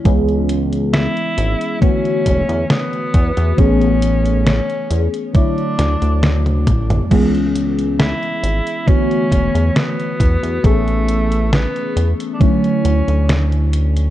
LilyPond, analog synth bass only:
\new Staff \with { instrumentName = "Analog synth bass" } { \clef bass \time 4/4 \key a \major \tempo 4 = 68 cis,4~ cis,16 r16 gis,,16 r8. e,,16 e,16 r8 e,16 e,16 | a,,4~ a,,16 r16 e,16 r8. d,16 d,8. a,,8 | cis,4~ cis,16 r16 gis,,16 r8. e,,16 e,16 r8 e,16 e,16 | a,,4~ a,,16 r16 e,16 r8. d,16 d,4~ d,16 | }